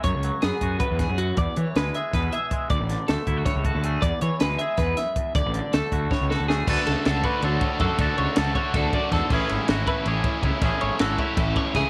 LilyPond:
<<
  \new Staff \with { instrumentName = "Clean electric guitar" } { \time 7/8 \key d \lydian \tempo 4 = 159 cis''4 gis'4 b'8 gis'8 fis'8 | d''8 cis''8 b'8 e''8 b'8 e''4 | d''4 a'4 cis''8 a'8 gis'8 | d''8 cis''8 b'8 e''8 b'8 e''4 |
d''4 a'4 cis''8 a'8 gis'8 | b'8 a'4 b'8 cis''4 a'8~ | a'8 cis''8 a'8 cis''8 a'8 d''8 a'8 | b'8 r4 b'8 cis''4 r8 |
r8 cis''8 a'8 cis''8 a'8 cis''8 gis'8 | }
  \new Staff \with { instrumentName = "Overdriven electric guitar" } { \time 7/8 \key d \lydian r2. r8 | r2. r8 | r2. r8 | r2. r8 |
r2. r8 | <d a d' fis'>4 <d a d' fis'>8 <a d' fis'>8 <d a d' fis'>4 <d a d' fis'>8 | <d a d' fis'>4 <d a d' fis'>8 <a d' fis'>8 <d a d' fis'>4 <d a d' fis'>8 | <a, e a cis' e'>4 <a, e a cis' e'>8 <a cis' e'>8 <e a cis' e'>4 <e a cis' e'>8 |
<a, e a cis' e'>4 <a, e a cis' e'>8 <a cis' e'>8 <e a cis' e'>4 <e a cis' e'>8 | }
  \new Staff \with { instrumentName = "Clean electric guitar" } { \time 7/8 \key d \lydian << { r4 b8 fis'2 | r4 gis8 gis'4 gis'8 gis8 | r4 a8 e'16 fis'8. fis'8 a8 | r4 gis8 gis'2 |
r4 a8 fis'4 fis'8 a8 | <fis' a'>4 a'8 fis'8 a'4 fis'8 | <fis' a'>4 a'8 fis'2 | <cis' e' gis'>4 fis'8 e'8 gis'4 e'8 |
<cis' e' gis'>4 fis'8 e'2 | } \\ { fis,8 fis4. a,8 gis,8 fis,8 | e,8 e4. b,4. | d,8 d4. a,4. | e,8 e4. gis,8 fis,8 e,8 |
d,8 d4. a,4. | d,4. d4 a,4 | d,4. d8 e,8 fis,8 gis,8 | a,4. a4 a,4 |
a,4. a8 a,8 b,8 cis8 | } >> }
  \new Staff \with { instrumentName = "Fingered electric bass" } { \clef bass \time 7/8 \key d \lydian fis,16 cis,8 r16 fis,16 r16 fis,8 r16 e,8 fis,8. | e,16 r16 e16 r16 d,8 r8 e,8 r4 | d,16 a,,8 r16 d,16 r16 d,8 r16 cis,8 d,8. | e,16 r16 e16 r16 d,8 r8 e,8 r4 |
d,16 a,,8 r16 d,16 r16 d,8 r16 cis,8 d,8. | d,16 r16 cis,16 r16 cis,8 r8 d,8 r8 fis,16 r16 | d,16 r16 cis,16 r16 cis,8 r8 d,8 r8 e,16 r16 | a,,16 r16 gis,,16 r16 gis,,8 r8 a,,8 r8 cis,16 r16 |
a,,16 r16 gis,,16 r16 gis,,8 r8 a,,8 r8 cis,16 r16 | }
  \new DrumStaff \with { instrumentName = "Drums" } \drummode { \time 7/8 <hh bd>8 hh8 <hh sn>8 <hh bd>8 <hh bd>8 <hh bd sn>8 hh8 | <hh bd>8 hh8 <hh sn>8 hh8 <hh bd sn>8 hh8 <hh bd>8 | <hh bd>8 <hh sn>8 <hh sn>8 <hh bd>8 <hh bd sn>8 <hh bd>8 hh8 | <hh bd>8 hh8 <hh sn>8 hh8 <hh bd sn>8 <hh sn>8 <hh bd>8 |
<hh bd>8 hh8 <hh sn>8 <hh bd>8 <bd sn>8 sn8 sn8 | <cymc bd>8 <cymr sn>8 <cymr sn>8 <bd cymr>8 cymr8 <bd cymr>8 <bd cymr>8 | <bd cymr>8 cymr8 <cymr sn>8 <bd cymr>8 <bd cymr>8 <bd cymr>8 <bd cymr sn>8 | <cymc bd>8 cymr8 <cymr sn>8 <bd cymr>8 cymr8 <bd cymr>8 <bd cymr>8 |
<bd cymr>8 cymr8 <cymr sn>8 <bd cymr>8 <bd cymr>8 <bd cymr>8 <bd cymr sn>8 | }
>>